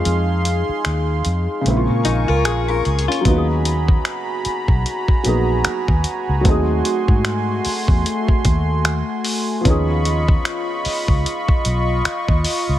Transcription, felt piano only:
0.00 1.59 F3 medium
0.00 1.60 G#3 medium
0.00 1.61 C4 medium
0.00 1.63 D#4 medium
0.00 1.64 F4 medium
1.61 3.20 C#3 medium
1.61 3.21 G#3 medium
1.66 3.22 A#3 medium
1.66 2.06 C4 medium
1.70 1.75 E4 medium
1.77 2.10 F4 medium
2.29 2.45 A#4 medium
2.45 2.67 G#4 medium
2.69 3.07 F4 medium
3.09 3.47 C#4 medium
3.21 5.19 F#3 medium
3.21 5.20 A#3 medium
3.26 5.21 B3 medium
3.26 5.23 D#4 medium
3.30 3.35 F#4 medium
3.37 5.27 G#4 medium
5.23 6.40 F#3 medium
5.23 6.45 A#3 medium
5.23 6.45 B3 medium
5.23 6.46 D#4 medium
5.28 6.47 G#4 medium
6.41 9.59 F#3 medium
6.41 9.60 A3 medium
6.46 9.61 C4 medium
6.46 9.63 D#4 medium
6.50 9.64 G#4 medium
9.61 12.79 F3 medium
9.61 12.79 B3 medium
9.65 12.79 C#4 medium
9.65 12.79 D#4 medium
9.70 12.79 G#4 medium

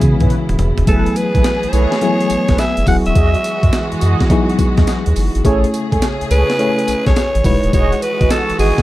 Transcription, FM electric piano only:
0.00 0.89 E3 loud
0.00 0.89 G#3 medium
0.00 0.88 B3 medium
0.00 0.89 C#4 medium
0.00 0.89 F#4 medium
0.00 0.88 G#4 loud
0.87 1.97 F#3 medium
0.87 1.97 A3 medium
0.87 1.97 B3 medium
0.87 1.97 E4 medium
0.87 1.97 G#4 medium
2.01 2.86 F#3 medium
2.01 2.87 A3 medium
2.01 2.86 B3 medium
2.01 2.87 E4 medium
2.01 2.87 G#4 medium
2.87 3.97 F#3 medium
2.87 3.97 B3 medium
2.87 3.97 E4 medium
2.87 3.97 F#4 medium
2.87 3.97 G#4 medium
4.30 5.40 F#3 loud
4.30 5.40 B3 medium
4.30 5.40 D#4 medium
4.30 5.40 E4 medium
4.30 5.40 G#4 loud
5.45 6.54 A3 medium
5.45 6.54 C#4 medium
5.45 6.55 E4 medium
5.45 6.55 G#4 medium
5.45 6.55 C#5 loud
6.59 7.44 A3 medium
6.59 7.45 C#4 medium
6.59 7.43 E4 medium
6.59 7.45 G#4 medium
6.59 7.45 C#5 medium
7.44 7.53 G3 medium
7.44 8.54 D#4 medium
7.44 8.54 E4 medium
7.44 8.54 F#4 medium
7.44 8.55 B4 medium
7.50 8.57 G#3 medium

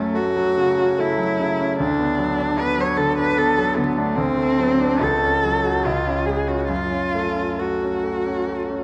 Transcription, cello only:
0.00 0.17 A3 medium
0.16 1.01 F#4 medium
0.99 1.79 E4 medium
1.80 2.61 D4 medium
2.59 2.82 B4 medium
2.81 2.99 C#5 medium
2.97 3.18 A4 medium
3.19 3.40 B4 medium
3.38 3.79 A4 medium
3.77 3.99 B3 medium
3.98 4.17 A3 medium
4.15 5.04 C4 medium
5.02 5.87 A4 medium
5.86 6.27 F4 medium
6.26 6.49 G#4 medium
6.48 6.69 F#4 medium
6.69 7.61 F4 medium
7.59 8.84 F#4 medium

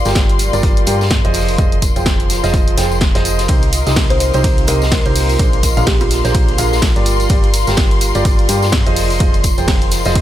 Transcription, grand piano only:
0.06 0.50 G3 medium
0.06 0.50 F4 medium
0.06 0.50 G4 medium
0.06 0.50 A#4 medium
0.06 0.50 G5 medium
0.53 0.85 G3 medium
0.53 0.85 F4 medium
0.53 0.85 G4 medium
0.53 0.85 A#4 medium
0.53 0.85 D5 loud
0.87 1.04 G3 medium
0.87 1.04 F4 medium
0.87 1.04 G4 medium
0.87 1.04 A#4 medium
0.87 1.04 G5 medium
1.25 1.56 F3 medium
1.25 1.56 F4 medium
1.25 1.56 G#4 medium
1.25 1.56 C5 medium
1.25 1.56 D#5 medium
1.58 1.75 F3 medium
1.58 1.75 F4 medium
1.58 1.75 G#4 medium
1.58 1.75 C5 medium
1.58 1.75 D#5 medium
1.96 2.40 F3 medium
1.96 2.40 F4 medium
1.96 2.40 G#4 medium
1.96 2.40 C5 medium
1.96 2.40 G5 medium
2.44 2.75 F3 medium
2.44 2.75 F4 medium
2.44 2.75 G#4 medium
2.44 2.75 C5 medium
2.44 2.75 D#5 loud
2.77 2.94 F3 medium
2.77 2.94 F4 medium
2.77 2.94 G#4 medium
2.77 2.94 C5 medium
2.77 2.94 G5 medium
3.15 3.46 F3 medium
3.15 3.46 F4 medium
3.15 3.46 G#4 medium
3.15 3.46 C5 medium
3.15 3.46 D#5 medium
3.49 3.65 C3 medium
3.49 3.65 D#4 medium
3.49 3.65 G4 medium
3.49 3.65 A#4 medium
3.49 3.65 C5 medium
3.87 4.31 C3 medium
3.87 4.31 D#4 medium
3.87 4.31 G4 medium
3.87 4.31 A#4 medium
3.87 4.31 D#5 medium
4.34 4.66 C3 medium
4.34 4.66 D#4 medium
4.34 4.66 G4 medium
4.34 4.66 A#4 medium
4.34 4.66 C5 loud
4.68 4.85 C3 medium
4.68 4.85 D#4 medium
4.68 4.85 G4 medium
4.68 4.85 A#4 medium
4.68 4.85 D#5 medium
5.06 5.37 C3 medium
5.06 5.37 D#4 medium
5.06 5.37 G4 medium
5.06 5.37 A#4 medium
5.06 5.37 C5 medium
5.39 5.56 A#2 medium
5.39 5.56 D4 medium
5.39 5.56 G#4 medium
5.39 5.56 A#4 medium
5.39 5.56 C5 medium
5.77 6.21 A#2 medium
5.77 6.21 D4 medium
5.77 6.21 G#4 medium
5.77 6.21 A#4 medium
5.77 6.21 F5 medium
6.25 6.56 A#2 medium
6.25 6.56 D4 medium
6.25 6.56 G#4 medium
6.25 6.56 A#4 medium
6.25 6.56 C5 loud
6.58 6.75 A#2 medium
6.58 6.75 D4 medium
6.58 6.75 G#4 medium
6.58 6.75 A#4 medium
6.58 6.75 F5 medium
6.96 7.27 G3 medium
6.96 7.27 F4 medium
6.96 7.27 G4 medium
6.96 7.27 A#4 medium
6.96 7.27 D5 medium
7.30 7.46 G3 medium
7.30 7.46 F4 medium
7.30 7.46 G4 medium
7.30 7.46 A#4 medium
7.30 7.46 D5 medium
7.67 8.12 G3 medium
7.67 8.12 F4 medium
7.67 8.12 G4 medium
7.67 8.12 A#4 medium
7.67 8.12 G5 medium
8.15 8.47 G3 medium
8.15 8.47 F4 medium
8.15 8.47 G4 medium
8.15 8.47 A#4 medium
8.15 8.47 D5 medium
8.49 8.66 G3 medium
8.49 8.65 F4 medium
8.49 8.66 G4 medium
8.49 8.65 A#4 medium
8.49 8.66 G5 medium
8.87 9.18 F3 medium
8.87 9.18 F4 medium
8.87 9.18 G#4 medium
8.87 9.18 C5 medium
8.87 9.18 D#5 medium
9.20 9.37 F3 medium
9.20 9.37 F4 medium
9.20 9.37 G#4 medium
9.20 9.37 C5 medium
9.20 9.37 D#5 medium
9.58 10.02 F3 medium
9.58 10.02 F4 medium
9.58 10.02 G#4 medium
9.58 10.02 C5 medium
9.58 10.02 G5 medium
10.06 10.21 F3 medium
10.06 10.21 F4 medium
10.06 10.21 G#4 medium
10.06 10.21 C5 medium
10.06 10.21 D#5 loud

